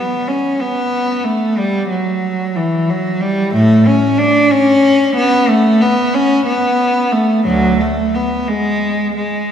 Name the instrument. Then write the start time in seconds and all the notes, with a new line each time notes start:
cello
Already playing: B3
0.28 C#4
0.60 B3
1.24 A3
1.58 G3
1.90 F#3
2.56 E3
2.90 F#3
3.21 G3
3.53 A2 A3
3.86 C#4
4.18 D4
4.51 C#4
5.16 B3
5.49 A3
5.81 B3
6.14 C#4
6.47 B3
7.12 A3
7.46 D2 F#3
7.81 A3
8.14 B3
8.48 G#3
9.16 G#3